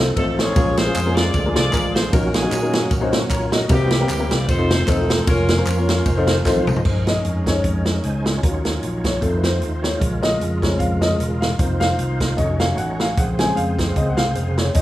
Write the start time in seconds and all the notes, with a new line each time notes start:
Already playing: C2 F3 A3 C4 D#4 A4
0.16 A1 A3 C4 D#4 F4 A4, kick, ride
0.38 F4 G#4 C#5, snare, ride
0.56 A#1 A#2 F3 G#3 A#3 C4 C#4 F4 G#4 A#4, kick, ride, tambourine
0.60 C#4
0.77 F4 G#4 C5, snare, ride, tambourine
0.86 A#3 C#4 F4 G#4 C5
0.94 F2, clap, ride, tambourine
1.06 A#3 C#4 F4 G#4 A#4
1.15 F4 G#4 D5, snare, ride, tambourine
1.34 D2 D3 F3 G#3 A#3 C4 G#4, kick, ride, tambourine
1.39 D4
1.45 A#3 D4 F4 G#4 A#4
1.55 C2 F4 G#4 D5, snare, ride, tambourine
1.73 A1 A#3 D4 F4 G#4 A#4, kick, clap, ride, tambourine
1.93 C5, snare, ride, tambourine
2.11 A#1 A#2 D#3 F#3 A#3 C#4 D#4 F#4 A#4, kick, ride, tambourine
2.34 C#4 D#4 G#4, snare, ride, tambourine
2.43 A#3 C#4 D#4 F#4 A#4
2.52 A#2, clap, ride, tambourine
2.62 A#3 C#4 D#4 F#4 A#4
2.73 snare, ride, tambourine
2.91 A#2, kick, ride, tambourine
3.01 A#3 C#4 D#4 F#4 C5
3.13 snare, ride, tambourine
3.30 A#2 F4 C#5 A#5, kick, clap, ride, tambourine
3.52 F#4 D#5, snare, ride, tambourine
3.69 C2 C3 E3 G3 A#3 C4 E4 G4 A#4, kick, ride, tambourine
3.91 snare, ride, tambourine
4.01 A#3 C4 E4 G4 A#4
4.09 D2 G4, clap, ride, tambourine
4.20 A#3 C4 E4 G4 A#4
4.31 C2 D5, snare, ride, tambourine
4.48 F1 D#3 F3 A3 C4 D#4 F4 A4 C5, kick, ride, tambourine
4.58 C4 D#4 F4 A4 C5
4.70 snare, ride, tambourine
4.87 E1 C4 D#4 F4 A4 C5, kick, clap, ride, tambourine
5.10 snare, ride, tambourine
5.27 F1 A#3 C#4 E4 F4 A#4 C#5, kick, ride, tambourine
5.32 F4
5.49 snare, ride, tambourine
5.58 A#3 C#4 F4 A#4 C5
5.66 F2 C#4 F4 A#4, clap, ride, tambourine
5.78 A#3 C#4 F4 A#4 C#5
5.89 snare, ride, tambourine
6.06 F1 D#3 F3 G#3 F4 C5, kick, ride, tambourine
6.17 C4 D#4 F4 A4 C5
6.27 A5, snare, ride, tambourine
6.45 A1 C4 D#4 F4 A4 C5 F5, kick, snare, clap, tambourine
6.56 high tom
6.67 C2 D#5, mid tom, tambourine
6.76 floor tom
6.85 A#1 D#3 G#3 A#3 C4 C#4 D#4 A#4 C5, kick, crash
6.90 C#4
7.07 D#5, snare, closed hi-hat
7.24 F2, closed hi-hat
7.46 G#3 C#4 D#4 C5 C#5, kick, snare, closed hi-hat
7.64 F2, kick, closed hi-hat
7.85 snare, closed hi-hat
8.04 C#2 C5 G#5, closed hi-hat
8.26 F4 C#5, snare, closed hi-hat
8.43 D#2 F#3 C#4 D#4 F4 A#4 C#5, kick, closed hi-hat
8.65 A#4, snare, closed hi-hat
8.83 A#1, closed hi-hat
9.04 C#5, kick, snare, closed hi-hat
9.21 F2 D#3 A3 C4 D#4 F4 A4 C5, kick, closed hi-hat
9.37 B4
9.43 C5, snare, closed hi-hat
9.62 D#2, closed hi-hat
9.82 C#5, snare, closed hi-hat
9.99 A#1 C#3 G#3 A#3 F4 A#4, kick, closed hi-hat
10.23 D#5, snare, closed hi-hat
10.40 F2, closed hi-hat
10.62 C#3 G#3 C4 C#5, kick, snare, closed hi-hat
10.79 F2 F5, kick, closed hi-hat
11.02 D#5, snare, closed hi-hat
11.19 E1, closed hi-hat
11.41 F5, snare, closed hi-hat
11.59 F1 D#3 A#3 C4 D#4 F4 C5, kick, closed hi-hat
11.80 F5, snare, closed hi-hat
11.98 C2, closed hi-hat
12.20 kick, snare, closed hi-hat
12.37 F1 D#3 F#3 A3 C#4 D#4 F#4 C#5 D#5, kick, closed hi-hat
12.60 F5, snare, closed hi-hat
12.77 A1 F#5, closed hi-hat
13.00 F5, snare, closed hi-hat
13.17 A#1 C#3 G#3 A#3 C4 G#4 C5 F#5, kick, closed hi-hat
13.39 C#3 G#3 C4 G#5, snare, closed hi-hat
13.56 F2 F5, closed hi-hat
13.79 kick, snare, closed hi-hat
13.96 C#2 C#3 G#3 C4 D#5, kick, closed hi-hat
14.09 F#5
14.17 C2 F5, snare, closed hi-hat
14.35 F1, closed hi-hat
14.58 C#5, snare, closed hi-hat
14.74 F#1 D#3 F#3 A#3 C#4 D#4 F#4 C5 D#5, kick, closed hi-hat